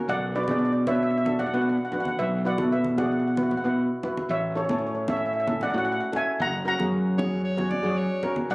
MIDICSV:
0, 0, Header, 1, 6, 480
1, 0, Start_track
1, 0, Tempo, 526316
1, 73, Time_signature, 4, 2, 24, 8
1, 7797, End_track
2, 0, Start_track
2, 0, Title_t, "Steel pan"
2, 0, Program_c, 0, 114
2, 86, Note_on_c, 0, 78, 113
2, 87, Note_on_c, 0, 74, 90
2, 304, Note_off_c, 0, 74, 0
2, 325, Note_on_c, 0, 71, 74
2, 325, Note_on_c, 0, 74, 93
2, 327, Note_off_c, 0, 78, 0
2, 384, Note_off_c, 0, 71, 0
2, 385, Note_off_c, 0, 74, 0
2, 396, Note_on_c, 0, 74, 68
2, 455, Note_off_c, 0, 74, 0
2, 466, Note_on_c, 0, 74, 82
2, 524, Note_off_c, 0, 74, 0
2, 535, Note_on_c, 0, 74, 69
2, 583, Note_off_c, 0, 74, 0
2, 594, Note_on_c, 0, 74, 75
2, 650, Note_off_c, 0, 74, 0
2, 661, Note_on_c, 0, 74, 66
2, 727, Note_off_c, 0, 74, 0
2, 800, Note_on_c, 0, 76, 99
2, 803, Note_on_c, 0, 73, 74
2, 855, Note_off_c, 0, 76, 0
2, 863, Note_off_c, 0, 73, 0
2, 866, Note_on_c, 0, 76, 68
2, 925, Note_off_c, 0, 76, 0
2, 936, Note_on_c, 0, 76, 80
2, 1000, Note_off_c, 0, 76, 0
2, 1010, Note_on_c, 0, 76, 69
2, 1063, Note_off_c, 0, 76, 0
2, 1074, Note_on_c, 0, 76, 81
2, 1132, Note_off_c, 0, 76, 0
2, 1143, Note_on_c, 0, 76, 72
2, 1208, Note_off_c, 0, 76, 0
2, 1269, Note_on_c, 0, 78, 100
2, 1278, Note_on_c, 0, 74, 78
2, 1326, Note_off_c, 0, 78, 0
2, 1337, Note_on_c, 0, 78, 76
2, 1340, Note_off_c, 0, 74, 0
2, 1395, Note_off_c, 0, 78, 0
2, 1406, Note_on_c, 0, 78, 85
2, 1464, Note_off_c, 0, 78, 0
2, 1475, Note_on_c, 0, 78, 68
2, 1534, Note_off_c, 0, 78, 0
2, 1544, Note_on_c, 0, 78, 62
2, 1609, Note_off_c, 0, 78, 0
2, 1619, Note_on_c, 0, 78, 52
2, 1675, Note_off_c, 0, 78, 0
2, 1686, Note_on_c, 0, 78, 71
2, 1747, Note_off_c, 0, 78, 0
2, 1762, Note_on_c, 0, 78, 62
2, 1816, Note_off_c, 0, 78, 0
2, 1827, Note_on_c, 0, 78, 76
2, 1887, Note_off_c, 0, 78, 0
2, 1899, Note_on_c, 0, 78, 70
2, 1956, Note_off_c, 0, 78, 0
2, 1996, Note_on_c, 0, 76, 95
2, 1997, Note_on_c, 0, 71, 81
2, 2220, Note_off_c, 0, 71, 0
2, 2243, Note_off_c, 0, 76, 0
2, 2248, Note_on_c, 0, 78, 98
2, 2255, Note_on_c, 0, 74, 77
2, 2469, Note_off_c, 0, 74, 0
2, 2484, Note_on_c, 0, 76, 83
2, 2489, Note_off_c, 0, 78, 0
2, 2493, Note_on_c, 0, 71, 66
2, 2703, Note_off_c, 0, 76, 0
2, 2708, Note_off_c, 0, 71, 0
2, 2719, Note_on_c, 0, 78, 87
2, 2727, Note_on_c, 0, 74, 72
2, 2779, Note_off_c, 0, 78, 0
2, 2785, Note_off_c, 0, 74, 0
2, 2790, Note_on_c, 0, 78, 63
2, 2834, Note_off_c, 0, 78, 0
2, 2845, Note_on_c, 0, 78, 62
2, 2904, Note_off_c, 0, 78, 0
2, 2915, Note_on_c, 0, 78, 53
2, 2976, Note_off_c, 0, 78, 0
2, 2987, Note_on_c, 0, 78, 59
2, 3051, Note_off_c, 0, 78, 0
2, 3063, Note_on_c, 0, 78, 48
2, 3120, Note_off_c, 0, 78, 0
2, 3131, Note_on_c, 0, 78, 55
2, 3182, Note_off_c, 0, 78, 0
2, 3193, Note_on_c, 0, 78, 50
2, 3248, Note_off_c, 0, 78, 0
2, 3259, Note_on_c, 0, 78, 65
2, 3323, Note_off_c, 0, 78, 0
2, 3337, Note_on_c, 0, 78, 64
2, 3395, Note_off_c, 0, 78, 0
2, 3926, Note_on_c, 0, 76, 89
2, 3930, Note_on_c, 0, 73, 69
2, 4146, Note_off_c, 0, 73, 0
2, 4167, Note_on_c, 0, 73, 80
2, 4168, Note_off_c, 0, 76, 0
2, 4171, Note_on_c, 0, 69, 69
2, 4225, Note_off_c, 0, 73, 0
2, 4228, Note_off_c, 0, 69, 0
2, 4236, Note_on_c, 0, 73, 59
2, 4283, Note_off_c, 0, 73, 0
2, 4294, Note_on_c, 0, 73, 74
2, 4354, Note_off_c, 0, 73, 0
2, 4365, Note_on_c, 0, 73, 64
2, 4429, Note_off_c, 0, 73, 0
2, 4440, Note_on_c, 0, 73, 64
2, 4500, Note_off_c, 0, 73, 0
2, 4511, Note_on_c, 0, 73, 61
2, 4572, Note_off_c, 0, 73, 0
2, 4648, Note_on_c, 0, 76, 91
2, 4659, Note_on_c, 0, 73, 66
2, 4703, Note_off_c, 0, 76, 0
2, 4711, Note_off_c, 0, 73, 0
2, 4714, Note_on_c, 0, 76, 69
2, 4779, Note_off_c, 0, 76, 0
2, 4795, Note_on_c, 0, 76, 70
2, 4852, Note_off_c, 0, 76, 0
2, 4863, Note_on_c, 0, 76, 61
2, 4913, Note_off_c, 0, 76, 0
2, 4924, Note_on_c, 0, 76, 76
2, 4977, Note_off_c, 0, 76, 0
2, 4988, Note_on_c, 0, 76, 61
2, 5051, Note_off_c, 0, 76, 0
2, 5132, Note_on_c, 0, 78, 93
2, 5138, Note_on_c, 0, 74, 76
2, 5185, Note_off_c, 0, 78, 0
2, 5191, Note_off_c, 0, 74, 0
2, 5196, Note_on_c, 0, 78, 71
2, 5259, Note_off_c, 0, 78, 0
2, 5270, Note_on_c, 0, 78, 88
2, 5324, Note_off_c, 0, 78, 0
2, 5335, Note_on_c, 0, 78, 75
2, 5390, Note_off_c, 0, 78, 0
2, 5401, Note_on_c, 0, 78, 76
2, 5464, Note_off_c, 0, 78, 0
2, 5476, Note_on_c, 0, 78, 65
2, 5534, Note_off_c, 0, 78, 0
2, 5619, Note_on_c, 0, 80, 104
2, 5624, Note_on_c, 0, 76, 73
2, 5833, Note_off_c, 0, 76, 0
2, 5852, Note_on_c, 0, 78, 91
2, 5852, Note_on_c, 0, 82, 113
2, 5853, Note_off_c, 0, 80, 0
2, 6067, Note_off_c, 0, 78, 0
2, 6080, Note_off_c, 0, 82, 0
2, 6091, Note_on_c, 0, 82, 95
2, 6095, Note_on_c, 0, 78, 83
2, 7484, Note_off_c, 0, 82, 0
2, 7486, Note_off_c, 0, 78, 0
2, 7760, Note_on_c, 0, 78, 108
2, 7765, Note_on_c, 0, 74, 91
2, 7797, Note_off_c, 0, 74, 0
2, 7797, Note_off_c, 0, 78, 0
2, 7797, End_track
3, 0, Start_track
3, 0, Title_t, "Alto saxophone"
3, 0, Program_c, 1, 65
3, 6549, Note_on_c, 1, 73, 93
3, 6774, Note_off_c, 1, 73, 0
3, 6787, Note_on_c, 1, 73, 102
3, 7023, Note_on_c, 1, 74, 105
3, 7036, Note_off_c, 1, 73, 0
3, 7269, Note_on_c, 1, 73, 95
3, 7283, Note_off_c, 1, 74, 0
3, 7631, Note_off_c, 1, 73, 0
3, 7797, End_track
4, 0, Start_track
4, 0, Title_t, "Steel pan"
4, 0, Program_c, 2, 114
4, 321, Note_on_c, 2, 62, 74
4, 321, Note_on_c, 2, 66, 70
4, 325, Note_on_c, 2, 71, 79
4, 390, Note_off_c, 2, 62, 0
4, 390, Note_off_c, 2, 66, 0
4, 392, Note_off_c, 2, 71, 0
4, 447, Note_on_c, 2, 62, 69
4, 448, Note_on_c, 2, 66, 66
4, 449, Note_on_c, 2, 68, 76
4, 657, Note_off_c, 2, 62, 0
4, 657, Note_off_c, 2, 66, 0
4, 658, Note_off_c, 2, 68, 0
4, 794, Note_on_c, 2, 71, 88
4, 795, Note_on_c, 2, 62, 75
4, 796, Note_on_c, 2, 66, 72
4, 1011, Note_off_c, 2, 62, 0
4, 1011, Note_off_c, 2, 71, 0
4, 1012, Note_off_c, 2, 66, 0
4, 1158, Note_on_c, 2, 62, 73
4, 1158, Note_on_c, 2, 69, 85
4, 1159, Note_on_c, 2, 66, 67
4, 1300, Note_off_c, 2, 62, 0
4, 1300, Note_off_c, 2, 69, 0
4, 1301, Note_off_c, 2, 66, 0
4, 1397, Note_on_c, 2, 62, 77
4, 1400, Note_on_c, 2, 66, 69
4, 1402, Note_on_c, 2, 71, 82
4, 1613, Note_off_c, 2, 62, 0
4, 1614, Note_off_c, 2, 66, 0
4, 1615, Note_off_c, 2, 71, 0
4, 1760, Note_on_c, 2, 62, 71
4, 1760, Note_on_c, 2, 66, 66
4, 1761, Note_on_c, 2, 71, 78
4, 1998, Note_off_c, 2, 62, 0
4, 1998, Note_off_c, 2, 66, 0
4, 1998, Note_off_c, 2, 71, 0
4, 2235, Note_on_c, 2, 71, 85
4, 2237, Note_on_c, 2, 64, 73
4, 2237, Note_on_c, 2, 66, 69
4, 2308, Note_off_c, 2, 71, 0
4, 2309, Note_off_c, 2, 64, 0
4, 2309, Note_off_c, 2, 66, 0
4, 2356, Note_on_c, 2, 66, 68
4, 2356, Note_on_c, 2, 69, 75
4, 2357, Note_on_c, 2, 64, 68
4, 2572, Note_off_c, 2, 66, 0
4, 2572, Note_off_c, 2, 69, 0
4, 2573, Note_off_c, 2, 64, 0
4, 2714, Note_on_c, 2, 66, 70
4, 2715, Note_on_c, 2, 68, 87
4, 2717, Note_on_c, 2, 64, 77
4, 2931, Note_off_c, 2, 66, 0
4, 2931, Note_off_c, 2, 68, 0
4, 2933, Note_off_c, 2, 64, 0
4, 3078, Note_on_c, 2, 64, 77
4, 3081, Note_on_c, 2, 71, 81
4, 3082, Note_on_c, 2, 66, 63
4, 3221, Note_off_c, 2, 64, 0
4, 3222, Note_off_c, 2, 71, 0
4, 3223, Note_off_c, 2, 66, 0
4, 3319, Note_on_c, 2, 64, 73
4, 3322, Note_on_c, 2, 66, 66
4, 3324, Note_on_c, 2, 71, 78
4, 3534, Note_off_c, 2, 64, 0
4, 3535, Note_off_c, 2, 66, 0
4, 3536, Note_off_c, 2, 71, 0
4, 3680, Note_on_c, 2, 64, 81
4, 3680, Note_on_c, 2, 66, 72
4, 3682, Note_on_c, 2, 71, 88
4, 3918, Note_off_c, 2, 64, 0
4, 3918, Note_off_c, 2, 66, 0
4, 3919, Note_off_c, 2, 71, 0
4, 4153, Note_on_c, 2, 61, 71
4, 4153, Note_on_c, 2, 64, 69
4, 4154, Note_on_c, 2, 69, 82
4, 4227, Note_off_c, 2, 61, 0
4, 4227, Note_off_c, 2, 64, 0
4, 4227, Note_off_c, 2, 69, 0
4, 4290, Note_on_c, 2, 69, 83
4, 4293, Note_on_c, 2, 64, 62
4, 4295, Note_on_c, 2, 61, 69
4, 4499, Note_off_c, 2, 69, 0
4, 4501, Note_off_c, 2, 61, 0
4, 4501, Note_off_c, 2, 64, 0
4, 4638, Note_on_c, 2, 61, 76
4, 4639, Note_on_c, 2, 69, 82
4, 4641, Note_on_c, 2, 64, 68
4, 4852, Note_off_c, 2, 61, 0
4, 4853, Note_off_c, 2, 69, 0
4, 4854, Note_off_c, 2, 64, 0
4, 4989, Note_on_c, 2, 61, 75
4, 4992, Note_on_c, 2, 64, 69
4, 4994, Note_on_c, 2, 69, 82
4, 5136, Note_off_c, 2, 61, 0
4, 5137, Note_off_c, 2, 64, 0
4, 5138, Note_off_c, 2, 69, 0
4, 5229, Note_on_c, 2, 61, 73
4, 5232, Note_on_c, 2, 66, 80
4, 5234, Note_on_c, 2, 64, 70
4, 5448, Note_off_c, 2, 61, 0
4, 5449, Note_off_c, 2, 66, 0
4, 5450, Note_off_c, 2, 64, 0
4, 5585, Note_on_c, 2, 69, 78
4, 5587, Note_on_c, 2, 64, 64
4, 5588, Note_on_c, 2, 61, 73
4, 5829, Note_off_c, 2, 69, 0
4, 5830, Note_off_c, 2, 64, 0
4, 5831, Note_off_c, 2, 61, 0
4, 6064, Note_on_c, 2, 61, 72
4, 6066, Note_on_c, 2, 66, 67
4, 6068, Note_on_c, 2, 70, 84
4, 6141, Note_off_c, 2, 61, 0
4, 6142, Note_off_c, 2, 66, 0
4, 6144, Note_off_c, 2, 70, 0
4, 6190, Note_on_c, 2, 66, 69
4, 6193, Note_on_c, 2, 68, 81
4, 6194, Note_on_c, 2, 61, 71
4, 6408, Note_off_c, 2, 66, 0
4, 6409, Note_off_c, 2, 68, 0
4, 6410, Note_off_c, 2, 61, 0
4, 6550, Note_on_c, 2, 61, 80
4, 6551, Note_on_c, 2, 66, 72
4, 6552, Note_on_c, 2, 68, 85
4, 6767, Note_off_c, 2, 61, 0
4, 6768, Note_off_c, 2, 66, 0
4, 6768, Note_off_c, 2, 68, 0
4, 6906, Note_on_c, 2, 73, 99
4, 6910, Note_on_c, 2, 61, 93
4, 6910, Note_on_c, 2, 66, 81
4, 7053, Note_off_c, 2, 73, 0
4, 7055, Note_off_c, 2, 61, 0
4, 7055, Note_off_c, 2, 66, 0
4, 7140, Note_on_c, 2, 66, 83
4, 7140, Note_on_c, 2, 68, 100
4, 7142, Note_on_c, 2, 61, 96
4, 7362, Note_off_c, 2, 66, 0
4, 7362, Note_off_c, 2, 68, 0
4, 7363, Note_off_c, 2, 61, 0
4, 7506, Note_on_c, 2, 61, 85
4, 7509, Note_on_c, 2, 70, 102
4, 7510, Note_on_c, 2, 66, 81
4, 7749, Note_off_c, 2, 61, 0
4, 7750, Note_off_c, 2, 70, 0
4, 7751, Note_off_c, 2, 66, 0
4, 7797, End_track
5, 0, Start_track
5, 0, Title_t, "Fingered electric bass"
5, 0, Program_c, 3, 33
5, 78, Note_on_c, 3, 35, 113
5, 391, Note_off_c, 3, 35, 0
5, 443, Note_on_c, 3, 47, 86
5, 1278, Note_off_c, 3, 47, 0
5, 1401, Note_on_c, 3, 47, 92
5, 1608, Note_off_c, 3, 47, 0
5, 2002, Note_on_c, 3, 35, 105
5, 2314, Note_off_c, 3, 35, 0
5, 2362, Note_on_c, 3, 47, 79
5, 3197, Note_off_c, 3, 47, 0
5, 3326, Note_on_c, 3, 47, 84
5, 3531, Note_off_c, 3, 47, 0
5, 3915, Note_on_c, 3, 33, 103
5, 4230, Note_off_c, 3, 33, 0
5, 4280, Note_on_c, 3, 45, 81
5, 5115, Note_off_c, 3, 45, 0
5, 5238, Note_on_c, 3, 45, 89
5, 5446, Note_off_c, 3, 45, 0
5, 5834, Note_on_c, 3, 30, 108
5, 6149, Note_off_c, 3, 30, 0
5, 6198, Note_on_c, 3, 42, 86
5, 7033, Note_off_c, 3, 42, 0
5, 7155, Note_on_c, 3, 42, 94
5, 7363, Note_off_c, 3, 42, 0
5, 7753, Note_on_c, 3, 35, 113
5, 7797, Note_off_c, 3, 35, 0
5, 7797, End_track
6, 0, Start_track
6, 0, Title_t, "Drums"
6, 435, Note_on_c, 9, 63, 81
6, 526, Note_off_c, 9, 63, 0
6, 792, Note_on_c, 9, 63, 71
6, 792, Note_on_c, 9, 64, 72
6, 883, Note_off_c, 9, 63, 0
6, 883, Note_off_c, 9, 64, 0
6, 1149, Note_on_c, 9, 63, 78
6, 1240, Note_off_c, 9, 63, 0
6, 1274, Note_on_c, 9, 64, 74
6, 1365, Note_off_c, 9, 64, 0
6, 1750, Note_on_c, 9, 64, 72
6, 1841, Note_off_c, 9, 64, 0
6, 1871, Note_on_c, 9, 63, 74
6, 1962, Note_off_c, 9, 63, 0
6, 2354, Note_on_c, 9, 63, 82
6, 2445, Note_off_c, 9, 63, 0
6, 2594, Note_on_c, 9, 63, 70
6, 2686, Note_off_c, 9, 63, 0
6, 2720, Note_on_c, 9, 63, 69
6, 2720, Note_on_c, 9, 64, 78
6, 2811, Note_off_c, 9, 63, 0
6, 2811, Note_off_c, 9, 64, 0
6, 3076, Note_on_c, 9, 63, 79
6, 3167, Note_off_c, 9, 63, 0
6, 3203, Note_on_c, 9, 64, 71
6, 3294, Note_off_c, 9, 64, 0
6, 3678, Note_on_c, 9, 64, 70
6, 3769, Note_off_c, 9, 64, 0
6, 3807, Note_on_c, 9, 63, 75
6, 3898, Note_off_c, 9, 63, 0
6, 4278, Note_on_c, 9, 63, 80
6, 4369, Note_off_c, 9, 63, 0
6, 4632, Note_on_c, 9, 63, 65
6, 4632, Note_on_c, 9, 64, 73
6, 4724, Note_off_c, 9, 63, 0
6, 4724, Note_off_c, 9, 64, 0
6, 4993, Note_on_c, 9, 63, 76
6, 5084, Note_off_c, 9, 63, 0
6, 5115, Note_on_c, 9, 64, 66
6, 5206, Note_off_c, 9, 64, 0
6, 5593, Note_on_c, 9, 64, 65
6, 5684, Note_off_c, 9, 64, 0
6, 6197, Note_on_c, 9, 63, 71
6, 6288, Note_off_c, 9, 63, 0
6, 6559, Note_on_c, 9, 63, 69
6, 6559, Note_on_c, 9, 64, 70
6, 6650, Note_off_c, 9, 63, 0
6, 6650, Note_off_c, 9, 64, 0
6, 6915, Note_on_c, 9, 63, 80
6, 7006, Note_off_c, 9, 63, 0
6, 7030, Note_on_c, 9, 64, 70
6, 7121, Note_off_c, 9, 64, 0
6, 7504, Note_on_c, 9, 64, 72
6, 7596, Note_off_c, 9, 64, 0
6, 7625, Note_on_c, 9, 63, 79
6, 7716, Note_off_c, 9, 63, 0
6, 7797, End_track
0, 0, End_of_file